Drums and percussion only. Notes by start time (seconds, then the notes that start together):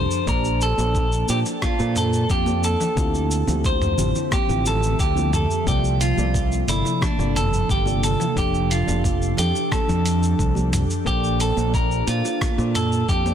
0.11 cabasa
0.27 kick, cabasa
0.45 cabasa
0.61 cabasa
0.78 high conga, cabasa
0.95 kick, cabasa
1.12 cabasa
1.28 cabasa
1.46 high bongo, cabasa
1.62 kick, cross-stick, high conga, cabasa
1.79 high bongo, cabasa
1.96 mid tom, cabasa
2.13 cabasa
2.30 kick, cabasa
2.46 high conga, cabasa
2.64 cabasa
2.80 high bongo, low conga, cabasa
2.97 kick, cabasa
3.14 cabasa
3.31 cabasa
3.47 high conga, low conga, cabasa
3.65 kick, cabasa
3.82 mid tom, cabasa
3.98 low conga, cabasa
4.15 high bongo, cabasa
4.31 kick, cross-stick, high conga, cabasa
4.49 cabasa
4.66 cabasa
4.83 cabasa
4.99 kick, cabasa
5.17 high conga, cabasa
5.33 mid tom, cabasa
5.51 cabasa
5.67 kick, cabasa
5.84 cabasa
6.01 closed hi-hat, cabasa
6.17 high conga, cabasa
6.34 kick, cabasa
6.52 cabasa
6.68 closed hi-hat, cabasa
6.85 high bongo, cabasa
7.01 kick, cross-stick, high conga, cabasa
7.19 high bongo, cabasa
7.36 closed hi-hat, mid tom, cabasa
7.53 cabasa
7.69 kick, cabasa
7.86 high conga, cabasa
8.03 closed hi-hat, cabasa
8.20 high bongo, low conga, cabasa
8.37 kick, cabasa
8.54 cabasa
8.71 closed hi-hat, cabasa
8.88 high conga, low conga, cabasa
9.04 kick, cabasa
9.22 cabasa
9.37 closed hi-hat, low conga, cabasa
9.55 high bongo, cabasa
9.72 kick, cross-stick, high conga, cabasa
9.89 cabasa
10.06 closed hi-hat, cabasa
10.23 cabasa
10.39 kick, cabasa
10.55 high conga, cabasa
10.73 closed hi-hat, mid tom, cabasa
10.90 cabasa
11.06 kick, cabasa
11.24 cabasa
11.40 closed hi-hat, cabasa
11.57 high conga, cabasa
11.74 kick, cabasa
11.91 cabasa
12.08 closed hi-hat, cabasa
12.25 high bongo, cabasa
12.41 kick, cross-stick, high conga, cabasa
12.59 high bongo, cabasa
12.75 closed hi-hat, mid tom, cabasa
12.92 cabasa
13.09 kick, cabasa
13.26 high conga, cabasa